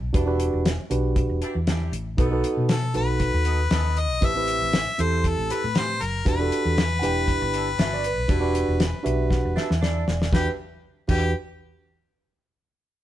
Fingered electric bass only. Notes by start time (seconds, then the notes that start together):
0.02 B1
0.15 E1
0.53 E1
0.91 B1
1.29 E1
1.55 E2
1.92 A1
2.19 B1
2.57 B2
2.95 B1
3.34 D#2
3.71 D#2
4.10 B1
4.23 A1
4.62 A1
4.99 E2
5.38 A1
5.64 A2
6.01 F#1
6.26 E1
6.65 E2
7.02 E1
7.42 G1
7.78 G1
8.18 B1
8.30 E1
8.68 E1
9.06 B1
9.45 E1
9.70 E2
10.07 E1
10.33 E2
11.09 E2